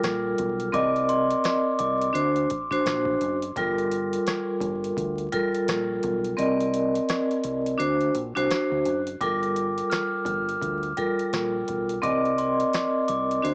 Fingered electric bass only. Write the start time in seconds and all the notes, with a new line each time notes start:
0.03 A#1
0.39 B1
0.74 C2
1.80 C2
2.15 D2
2.86 A#1
3.21 F#1
3.56 G1
4.61 G1
4.97 D2
5.68 A#1
6.04 B1
6.39 C2
7.45 C2
7.80 D2
8.15 A#1
8.36 C2
8.72 D2
8.86 F#1
9.21 G1
10.25 G1
10.62 D2
11.33 A#1
11.69 B1
12.03 C2
13.09 C2
13.44 D2